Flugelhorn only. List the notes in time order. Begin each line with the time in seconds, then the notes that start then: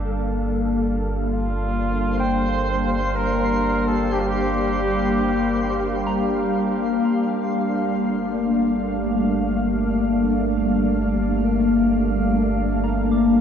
1.23 F4
2.19 C5
2.93 C5
3.16 A#4
3.88 A4
4.13 G4
4.20 F4
4.27 G4